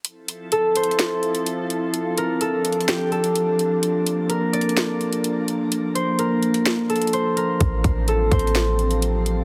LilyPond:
<<
  \new Staff \with { instrumentName = "Harp" } { \time 4/4 \key f \major \tempo 4 = 127 r4 a'8 c''4. r4 | r8 bes'8 a'4 g'8 a'4. | r4 bes'8 d''4. r4 | r8 c''8 bes'4. a'8 c''8 bes'8 |
r4 a'8 c''4. r4 | }
  \new Staff \with { instrumentName = "Ambient pad" } { \time 4/4 \key f \major << { <f c' a'>1~ | <f c' a'>1 | f1~ | f1 |
<g c'>1 | } \\ { e'1 | d'1 | bes1~ | bes1 |
r1 | } >> }
  \new Staff \with { instrumentName = "808-style bass" } { \clef bass \time 4/4 \key f \major r1 | r1 | r1 | r1 |
a,,8 a,,4 a,,2~ a,,8 | }
  \new DrumStaff \with { instrumentName = "Drums" } \drummode { \time 4/4 hh8 hh8 \tuplet 3/2 { hh16 r16 r16 hh16 hh16 hh16 } <hh sn>8 hh16 hh16 hh8 hh8 | hh8 hh8 \tuplet 3/2 { hh16 r16 r16 hh16 hh16 hh16 } <hh sn>8 hh16 hh16 hh8 hh8 | hh8 hh8 \tuplet 3/2 { hh16 r16 r16 hh16 hh16 hh16 } <hh sn>8 hh16 hh16 hh8 hh8 | hh8 hh8 hh8 hh16 hh16 <hh sn>8 hh32 hh32 hh32 hh32 hh8 hh8 |
<hh bd>8 <hh bd>8 \tuplet 3/2 { hh16 r16 r16 <hh bd>16 hh16 hh16 } <hh sn>8 hh16 hh16 hh8 hh8 | }
>>